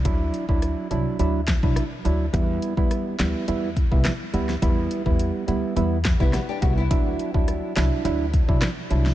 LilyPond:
<<
  \new Staff \with { instrumentName = "Nylon-string guitar" } { \time 4/4 \key e \minor \tempo 4 = 105 r1 | r1 | r2 r8. <b e'>16 <b fis'>16 <d' g'>16 <b fis'>16 <b e'>16~ | <b e'>16 r2. r8. | }
  \new Staff \with { instrumentName = "Synth stab" } { \time 4/4 \key e \minor <fis d' e'>8. <fis d' e'>8. <fis d' e'>8 <fis d' e'>16 r8 <fis d' e'>16 r8 <fis d' e'>16 r16 | <g b e'>8. <g b e'>8. <g b e'>8 <g b e'>16 r8 <g b e'>16 r8 <g b e'>16 r16 | <g b e'>8. <g b e'>8. <g b e'>8 <g b e'>16 r8 <g b e'>16 r8 <g b e'>16 r16 | <fis d' e'>8. <fis d' e'>8. <fis d' e'>8 <fis d' e'>16 r8 <fis d' e'>16 r8 <fis d' e'>16 r16 | }
  \new Staff \with { instrumentName = "Upright bass" } { \clef bass \time 4/4 \key e \minor d,8 r16 d,8 r16 c,16 r16 d,8. b,,16 r8 d,8 | e,8 r16 e,8 r16 d,16 r16 e,8. c,16 r8 d,8 | e,8 r16 e,8 r16 d,16 r16 e,8. c,16 r8 c,8 | d,8 r16 d,8 r16 c,16 r16 d,8. b,,16 r8 c,8 | }
  \new DrumStaff \with { instrumentName = "Drums" } \drummode { \time 4/4 <hh bd>8 hh16 bd16 <hh ss>8 hh8 hh8 <hc hh bd sn>16 bd16 <hh ss>8 hh8 | <hh bd>8 hh16 bd16 <hh ss>8 <hc hh sn>8 hh8 <hh bd>16 bd16 <hc hh ss sn>8 hh16 sn16 | <hh bd>8 hh16 bd16 hh8 hh8 hh8 <hc hh bd sn>16 bd16 <hh ss sn>8 <hh bd>8 | <hh bd>8 hh16 bd16 <hh ss>8 <hc hh sn>8 hh8 <hh bd>16 bd16 <hc hh ss sn>8 hh16 sn16 | }
>>